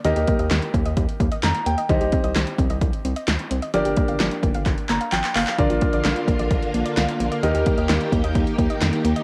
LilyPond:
<<
  \new Staff \with { instrumentName = "Grand piano" } { \time 4/4 \key ees \major \tempo 4 = 130 << { r2. bes''8 g''8 | r1 | r2 r8 bes''8 g''8 f''8 | r1 |
r1 | } \\ { <ees' g' bes' ees''>1 | <ees' g' c'' ees''>1 | <d' g' bes' d''>1 | <d' f' bes' d''>1 |
<ees' g' bes' ees''>1 | } >> }
  \new Staff \with { instrumentName = "String machine" } { \time 4/4 \key ees \major << { r1 | r1 | r1 | <d f'>1 |
<ees g'>1 | } \\ { r1 | r1 | r1 | bes1~ |
bes1 | } >> }
  \new Staff \with { instrumentName = "Synth arpeggio sound" } { \time 4/4 \key ees \major ees16 g'16 bes16 ees''16 ees16 r16 bes16 ees''16 r8 bes16 ees''16 ees16 r16 bes16 ees''16 | ees16 g'16 c'16 ees''16 ees16 r16 c'16 ees''16 r8 c'16 ees''16 ees16 r16 c'16 ees''16 | f16 g'16 bes16 f''16 f16 r16 bes16 f''16 r8 bes16 f''16 f16 r16 bes16 f''16 | d16 f'16 bes16 d''16 d16 r16 bes16 d''16 r8 bes16 d''16 d16 r16 bes16 d''16 |
ees16 g'16 bes16 ees''16 ees16 r16 bes16 ees''16 r8 bes16 ees''16 ees16 r16 bes16 ees''16 | }
  \new Staff \with { instrumentName = "Analog synth bass" } { \clef bass \time 4/4 \key ees \major ees,16 ees,16 r16 ees,16 ees,16 r16 ees,16 ees,16 ees,16 r16 ees,16 r16 f,16 r16 ees,16 r16 | c,16 c,16 r16 c,16 c,16 r16 c,16 c,16 c,16 r16 c,16 r16 d,16 r16 c,16 r16 | g,,16 g,,16 r16 g,,16 g,,16 r16 g,,16 g,,16 g,,16 r16 g,,16 r16 aes,,16 r16 g,,16 r16 | bes,,16 bes,,16 r16 bes,,16 bes,,16 r16 bes,,16 bes,,16 bes,,16 r16 bes,,16 r16 c,16 r16 bes,,16 r16 |
ees,16 ees,16 r16 ees,16 ees,16 r16 ees,16 ees,16 ees,16 r16 ees,16 r16 f,16 r16 ees,16 r16 | }
  \new DrumStaff \with { instrumentName = "Drums" } \drummode { \time 4/4 hh16 hh16 <hh bd>16 hh16 <hc hh sn>16 hh16 <hh bd>16 hh16 <hh bd>16 hh16 <hh bd>16 hh16 <hc hh sn>16 hh16 hh16 hh16 | <hh bd>16 hh16 <hh bd>16 hh16 <hc hh sn>16 hh16 <hh bd>16 hh16 <hh bd>16 hh16 hh16 hh16 <hc hh sn>16 hh16 hh16 hh16 | hh16 hh16 <hh bd>16 hh16 <hc hh sn>16 hh16 <hh bd>16 hh16 <hc hh bd>16 hh16 <hc hh>16 hh16 <hc hh>16 <hc hh>16 <hc hho>16 <hc hh>16 | <hh bd>16 hh16 <hh bd>16 hh16 <hc hh sn>16 hh16 <hh bd>16 hh16 <hh bd>16 hh16 hh16 hh16 <hc hh sn>16 hh16 hh16 hh16 |
hh16 hh16 <hh bd>16 hh16 <hc hh sn>16 hh16 <hh bd>16 hh16 <hh bd>16 hh16 <hh bd>16 hh16 <hc hh sn>16 hh16 hh16 hh16 | }
>>